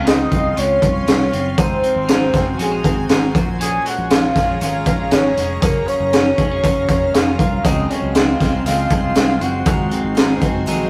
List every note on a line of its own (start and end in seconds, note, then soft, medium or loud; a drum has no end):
0.00 0.25 C#2 medium
0.00 1.58 C#3 medium
0.00 0.30 C4 medium
0.00 1.56 F4 medium
0.00 1.56 F5 medium
0.00 1.56 C6 medium
0.05 0.58 D#4 loud
0.05 0.55 F4 medium
0.05 0.60 D#5 loud
0.05 snare loud
0.05 closed hi-hat loud
0.31 0.53 C2 medium
0.31 1.32 C4 medium
0.31 kick medium
0.31 closed hi-hat medium
0.56 0.78 C#2 medium
0.56 1.58 C#4 medium
0.56 1.06 F4 medium
0.56 1.58 C#5 loud
0.56 closed hi-hat loud
0.82 1.04 C2 medium
0.82 kick medium
0.82 closed hi-hat medium
1.07 1.29 C2 medium
1.07 1.58 F4 medium
1.07 snare loud
1.07 closed hi-hat loud
1.32 1.54 F#1 loud
1.32 1.63 C4 medium
1.32 closed hi-hat medium
1.57 1.79 G#1 loud
1.57 3.34 G#2 medium
1.57 2.55 C4 loud
1.57 2.06 D#4 medium
1.57 3.33 F#4 medium
1.57 3.33 C5 medium
1.57 2.56 C5 loud
1.57 3.33 G#5 loud
1.57 kick loud
1.57 closed hi-hat loud
1.83 2.32 C4 medium
1.83 closed hi-hat medium
1.96 2.28 G#1 loud
2.08 2.57 D#4 medium
2.08 snare loud
2.08 closed hi-hat loud
2.33 2.55 F#1 medium
2.33 2.83 C4 medium
2.33 kick medium
2.33 snare soft
2.33 closed hi-hat medium
2.58 2.81 A#1 loud
2.58 3.31 G#3 medium
2.58 2.71 C#4 medium
2.58 3.32 G#4 medium
2.58 closed hi-hat medium
2.71 3.08 D#4 medium
2.84 3.06 G#1 medium
2.84 3.39 C4 medium
2.84 kick medium
2.84 closed hi-hat medium
3.09 3.31 G#1 medium
3.09 3.40 D#4 medium
3.09 snare loud
3.09 closed hi-hat loud
3.34 3.78 A#1 loud
3.34 3.58 A#2 medium
3.34 5.60 G#4 medium
3.34 5.60 C#5 medium
3.34 7.60 A#5 medium
3.34 kick loud
3.34 closed hi-hat medium
3.59 5.62 A#2 medium
3.59 4.10 C#4 medium
3.59 3.87 G#4 loud
3.59 3.89 G#5 loud
3.59 closed hi-hat loud
3.85 4.35 G#3 medium
3.85 4.12 F#4 medium
3.85 4.12 F#5 loud
3.85 closed hi-hat medium
3.98 4.30 A#1 loud
4.10 4.61 C#4 medium
4.10 4.60 F4 loud
4.10 4.61 F5 loud
4.10 snare loud
4.10 closed hi-hat loud
4.35 4.57 A#1 medium
4.35 4.85 G#3 medium
4.35 kick medium
4.35 snare soft
4.35 closed hi-hat medium
4.61 4.83 G#1 loud
4.61 5.12 C#4 medium
4.61 5.14 F4 medium
4.61 5.15 F5 loud
4.61 closed hi-hat loud
4.86 5.08 A#1 loud
4.86 5.36 G#3 medium
4.86 kick medium
4.86 closed hi-hat medium
5.11 5.33 G#1 loud
5.11 5.63 C#4 medium
5.11 5.65 C#5 loud
5.11 snare loud
5.11 closed hi-hat loud
5.37 5.58 F1 loud
5.37 5.67 G#3 medium
5.37 closed hi-hat medium
5.62 5.83 F#1 loud
5.62 7.64 F#2 medium
5.62 7.62 F#3 medium
5.62 5.88 A#3 medium
5.62 6.13 C#4 medium
5.62 5.89 A#4 loud
5.62 7.63 F5 medium
5.62 kick loud
5.62 closed hi-hat loud
5.87 6.38 A#3 medium
5.87 6.88 C#4 medium
5.87 6.88 C#5 loud
5.87 closed hi-hat medium
6.00 6.32 F#1 loud
6.13 6.63 C#4 medium
6.13 snare loud
6.13 closed hi-hat loud
6.38 6.59 F1 medium
6.38 6.51 G#3 medium
6.38 kick medium
6.38 closed hi-hat medium
6.51 6.88 A#3 medium
6.63 6.85 F#1 loud
6.63 7.14 C#4 medium
6.63 kick loud
6.63 closed hi-hat loud
6.88 7.10 F1 medium
6.88 7.39 A#3 medium
6.88 7.16 C#4 medium
6.88 7.15 C#5 loud
6.88 kick loud
6.88 closed hi-hat medium
7.14 7.36 F1 medium
7.14 7.65 C#4 medium
7.14 7.65 F4 medium
7.14 7.66 F5 loud
7.14 snare loud
7.14 closed hi-hat loud
7.39 7.60 C2 loud
7.39 7.70 A#3 medium
7.39 kick loud
7.39 closed hi-hat medium
7.64 7.86 C#2 loud
7.64 8.15 C#3 medium
7.64 9.66 C#3 medium
7.64 8.13 F3 medium
7.64 8.15 G#3 medium
7.64 8.15 C4 medium
7.64 8.16 C4 medium
7.64 7.91 D#4 medium
7.64 9.64 F4 medium
7.64 8.16 F4 loud
7.64 9.64 C5 medium
7.64 7.91 D#5 loud
7.64 9.64 C6 medium
7.64 kick loud
7.64 closed hi-hat loud
7.90 8.40 G#3 medium
7.90 8.17 C#4 medium
7.90 8.16 C#5 medium
7.90 closed hi-hat medium
8.02 8.34 C#2 loud
8.15 8.40 F3 medium
8.15 8.40 G#3 medium
8.15 8.66 C4 medium
8.15 8.41 C4 medium
8.15 8.65 F4 medium
8.15 8.39 F4 medium
8.15 8.65 F5 loud
8.15 snare loud
8.15 closed hi-hat loud
8.40 8.62 C2 loud
8.40 8.90 G#3 medium
8.40 8.66 G#3 soft
8.40 8.66 C4 medium
8.40 8.65 F4 medium
8.40 kick medium
8.40 snare soft
8.40 closed hi-hat medium
8.65 8.86 C#2 medium
8.65 9.16 C#3 medium
8.65 9.13 F3 medium
8.65 9.15 G#3 medium
8.65 9.16 C4 medium
8.65 9.17 C4 medium
8.65 9.01 F4 medium
8.65 9.17 F4 loud
8.65 9.01 F5 loud
8.65 closed hi-hat loud
8.90 9.12 C2 loud
8.90 9.41 G#3 medium
8.90 kick medium
8.90 closed hi-hat medium
9.03 9.43 F4 medium
9.03 9.44 F5 loud
9.14 9.37 C2 medium
9.14 9.40 F3 medium
9.14 9.41 G#3 medium
9.14 9.66 C4 medium
9.14 9.41 C4 medium
9.14 9.39 F4 medium
9.14 snare loud
9.14 closed hi-hat loud
9.40 9.62 F#1 loud
9.40 9.91 G#3 medium
9.40 9.66 G#3 soft
9.40 9.67 C4 soft
9.40 9.66 F4 medium
9.40 10.17 F#4 medium
9.40 10.17 F#5 loud
9.40 closed hi-hat medium
9.66 9.87 G#1 loud
9.66 10.16 G#2 medium
9.66 10.90 G#2 medium
9.66 10.17 D#3 medium
9.66 10.14 F#3 medium
9.66 10.16 G#3 medium
9.66 10.16 C4 loud
9.66 10.16 D#4 medium
9.66 10.90 F#4 medium
9.66 10.18 G#4 loud
9.66 10.90 C5 medium
9.66 10.90 G#5 medium
9.66 kick loud
9.66 closed hi-hat loud
9.91 10.41 C4 medium
9.91 closed hi-hat medium
10.04 10.36 G#1 medium
10.15 10.41 F#3 medium
10.15 10.41 G#3 medium
10.15 10.40 C4 medium
10.15 10.67 D#4 medium
10.15 10.39 G#4 medium
10.15 snare loud
10.15 closed hi-hat loud
10.40 10.63 F#1 loud
10.40 10.66 F#3 medium
10.40 10.66 G#3 medium
10.40 10.67 C4 medium
10.40 10.90 C4 medium
10.40 10.66 G#4 medium
10.40 kick medium
10.40 closed hi-hat medium
10.66 10.89 A#1 loud
10.66 10.90 G#2 medium
10.66 10.90 D#3 loud
10.66 10.90 F#3 loud
10.66 10.90 G#3 medium
10.66 10.90 C4 loud
10.66 10.90 D#4 medium
10.66 10.90 G#4 loud
10.66 closed hi-hat loud